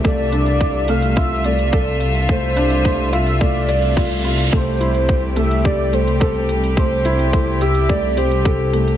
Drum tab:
HH |x-xxx-xxx-xxx-xx|x-xxx-xxx-xxx-xx|x-xxx-xxx-xxx-xx|x-xxx-xxx-xxx-xx|
BD |o---o---o---o---|o---o---o---o---|o---o---o---o---|o---o---o---o---|